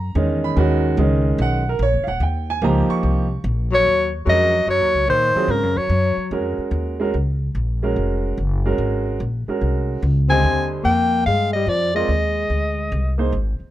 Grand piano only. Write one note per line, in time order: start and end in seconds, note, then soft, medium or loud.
0.00 0.40 A#5 loud
0.15 0.55 D#3 medium
0.15 0.56 G#3 medium
0.15 0.56 C#4 medium
0.15 0.79 D#4 medium
0.44 0.82 B5 medium
0.56 0.96 D#3 medium
0.56 0.97 G#3 medium
0.56 0.97 C#4 medium
0.56 0.97 F#4 loud
0.98 1.61 D#3 medium
0.98 1.61 G#3 medium
0.98 1.61 C#4 medium
0.98 1.61 D#4 medium
1.42 1.67 F#5 loud
1.69 1.81 A#4 medium
1.83 2.08 C#5 loud
2.04 2.06 F5 medium
2.08 2.21 F#5 medium
2.23 2.48 G5 medium
2.50 2.62 G#5 loud
2.62 3.25 F3 medium
2.62 3.25 A#3 medium
2.62 3.25 D#4 medium
2.62 3.26 G4 medium
2.62 2.90 A#5 loud
2.90 3.75 C#6 loud
4.26 4.51 G#3 medium
4.26 4.51 C#4 medium
4.26 4.51 F#4 medium
4.26 4.51 A#4 medium
5.36 5.48 F#3 medium
5.36 5.48 C4 medium
5.36 5.49 F4 medium
5.36 5.49 G#4 medium
6.32 6.95 G#3 medium
6.32 6.95 C#4 medium
6.32 6.95 F#4 medium
6.32 6.95 A#4 medium
7.00 7.13 G#3 medium
7.00 7.13 C#4 medium
7.00 7.13 F#4 medium
7.00 7.13 A#4 medium
7.83 8.35 G#3 medium
7.83 8.35 C#4 medium
7.83 8.35 F#4 medium
7.83 8.36 A#4 medium
8.65 9.18 G#3 medium
8.65 9.18 C#4 medium
8.65 9.18 F#4 medium
8.65 9.18 A#4 medium
9.48 10.00 G#3 medium
9.48 10.00 C#4 medium
9.48 10.00 F#4 medium
9.48 10.01 A#4 medium
10.30 10.82 D3 medium
10.30 10.82 G3 medium
10.30 10.83 C5 medium
10.30 10.83 D#5 medium
11.95 12.07 C4 medium
11.95 12.07 F4 medium
11.95 12.08 A#4 medium
11.95 12.08 D5 medium
13.18 13.30 A#3 medium
13.18 13.31 D#4 medium
13.18 13.31 G#4 medium
13.18 13.31 C5 medium